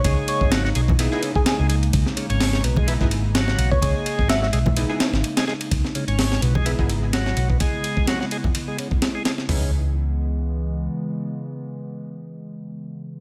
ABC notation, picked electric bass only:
X:1
M:4/4
L:1/16
Q:"Swing 16ths" 1/4=127
K:C#dor
V:1 name="Picked electric bass" clef=bass
C,, z2 G,,,3 B,,,3 z4 C,,3 | C,, z2 G,,,3 B,,,3 G,,,4- G,,, B,,, z | C,, z2 G,,,3 B,,,3 z2 G,,, z4 | C,, z2 G,,,3 B,,,3 G,,,4- G,,, B,,, z |
z16 | C,,12 z4 | z16 |]